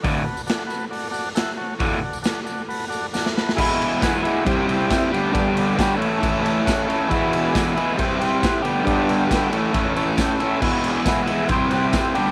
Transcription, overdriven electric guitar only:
\new Staff \with { instrumentName = "Overdriven electric guitar" } { \time 4/4 \key d \major \tempo 4 = 136 <d, a, d>8 r2. r8 | <d, a, d>8 r2. r8 | <e, b, e gis b e'>4 <e gis b e'>8 <e gis b e'>8 <c g c' e' g' c''>8 <c' e' g' c''>4 <g, d g b d' g'>8 | <g, d g b d' g'>4 <g b d' g'>8 <a, e a cis' e' a'>8 <a, e a cis' e' a'>8 <a cis' e' a'>4 <a cis' e' a'>8 |
<e, b, e gis b e'>4 <e gis b e'>8 <e gis b e'>8 <c g c' e' g' c''>8 <c' e' g' c''>4 <g, d g b d' g'>8 | <g, d g b d' g'>4 <g b d' g'>8 <a, e a cis' e' a'>8 <a, e a cis' e' a'>8 <a cis' e' a'>4 <a cis' e' a'>8 | <e, b, e gis b e'>4 <e gis b e'>8 <e gis b e'>8 <c g c' e' g' c''>8 <c' e' g' c''>4 <g, d g b d' g'>8 | }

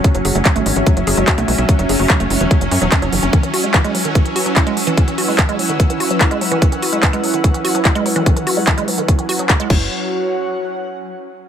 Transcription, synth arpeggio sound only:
\new Staff \with { instrumentName = "Synth arpeggio sound" } { \clef bass \time 4/4 \key e \mixolydian \tempo 4 = 146 fis16 fis16 gis'16 a16 fis16 a16 gis16 e16 fis16 fis16 gis'16 gis16 fis'16 a16 gis16 fis16 | fis16 fis16 gis'16 a16 fis16 a16 gis16 e16 fis16 fis16 cis'16 fis16 fis16 fis16 e16 cis'16 | e16 e16 fis'16 gis16 e16 gis16 fis16 dis16 e16 e16 fis'16 fis16 e'16 gis16 fis16 e16 | e16 e16 fis'16 gis16 e16 gis16 fis16 dis16 e16 e16 fis'16 fis16 e'16 gis16 fis16 e16 |
e16 e16 fis'16 gis16 e16 gis16 fis16 dis16 e16 e16 fis'16 fis16 e'16 gis16 fis16 e16 | e16 e16 fis'16 gis16 e16 gis16 fis16 dis16 e16 e16 fis'16 fis16 e'16 gis16 fis8 | r1 | }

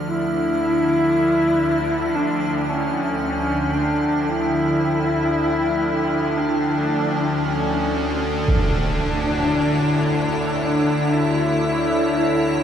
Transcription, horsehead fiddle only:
\new Staff \with { instrumentName = "Horsehead fiddle" } { \time 4/4 \key d \minor \tempo 4 = 57 e'2 d'8 cis'8 cis'8 d'8 | e'2 d'4 cis'8. r16 | d'2 d'8 e'4 e'8 | }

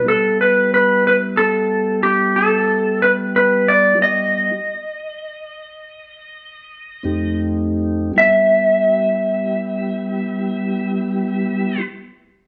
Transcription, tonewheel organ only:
\new Staff \with { instrumentName = "Tonewheel organ" } { \time 12/8 \key e \minor \tempo 4. = 58 <g b e' g'>1. | <g b e' g'>4 r2. r8 <f, a c' ees' g'>4. | <g b e' g'>1. | }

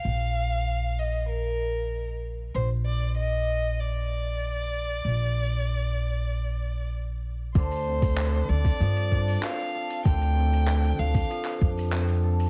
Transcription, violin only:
\new Staff \with { instrumentName = "Violin" } { \time 4/4 \key d \phrygian \tempo 4 = 96 f''4. ees''8 bes'4. r8 | c''8 d''8 ees''4 d''2~ | d''2. r4 | c''4. d''4. f''4 |
g''4. f''4 r4. | }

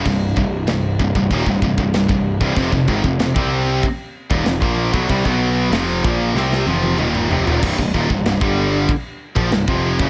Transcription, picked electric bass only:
\new Staff \with { instrumentName = "Picked electric bass" } { \clef bass \time 4/4 \key c \minor \tempo 4 = 95 c,,8 c,,8 c,,8 c,,16 c,,16 ees,,16 c,,16 c,,16 c,,16 c,,16 c,,8 c,,16 | f,,16 f,,16 aes,,16 f,,16 f,,16 c,8. r8. ees,,16 f,,16 bes,,8 b,,16 | c,16 b,,8. f,,8 bes,,8 c,8 f,,8 ees,,8 f,,16 ees,,16 | c,,16 c,,16 ees,,16 c,,16 c,,16 g,,8. r8. bes,,16 c,,16 f,,8 fis,,16 | }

